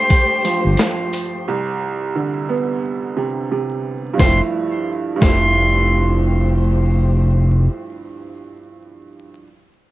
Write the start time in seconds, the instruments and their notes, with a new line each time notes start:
Already playing: upright piano G2 A3 G4, string section A3 G4 C5, muted trumpet C6
0.10 kick, closed hi-hat, sleigh bells
0.45 upright piano F3, closed hi-hat, sleigh bells
0.65 analog synth bass G1
0.77 upright piano F3, snare, closed hi-hat, sleigh bells
1.13 closed hi-hat, sleigh bells
1.48 upright piano C2
2.15 upright piano D3
2.49 upright piano B3
3.17 upright piano C3
3.51 upright piano C3
4.14 upright piano G2 F3
4.19 analog synth bass F1, string section A3 G4 C5, upright piano A3, muted trumpet C6, kick, snare, sleigh bells
4.26 upright piano E4
5.16 upright piano G2
5.20 analog synth bass F1, upright piano F3 A3, string section A3 G4 C5, muted trumpet C6, kick, snare, sleigh bells
5.28 upright piano E4